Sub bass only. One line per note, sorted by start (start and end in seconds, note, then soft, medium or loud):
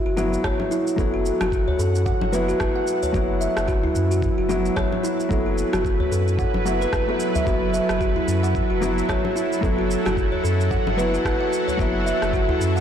0.06 0.37 F#1 loud
0.44 0.54 F#1 medium
0.98 1.32 F#1 loud
1.41 1.73 F#1 medium
1.79 2.13 F#2 medium
2.22 2.54 F#1 loud
2.60 2.70 F#1 medium
3.14 3.48 F#1 loud
3.57 3.89 F#1 medium
3.96 4.29 F#2 medium
4.39 4.70 F#1 loud
4.77 4.86 F#1 medium
5.31 5.64 F#1 medium
5.73 6.05 F#1 medium
6.12 6.45 F#2 medium
6.55 6.86 F#1 loud
6.93 7.03 F#1 medium
7.47 7.80 F#1 medium
7.90 8.21 F#1 medium
8.28 8.61 F#2 medium
8.71 9.02 F#1 loud
9.09 9.19 F#1 medium
9.63 9.96 F#1 medium
10.06 10.38 F#1 medium
10.44 10.78 F#2 medium
10.87 11.18 F#1 loud
11.25 11.35 F#1 medium
11.79 12.13 F#1 loud
12.22 12.54 F#1 medium
12.61 12.80 F#2 medium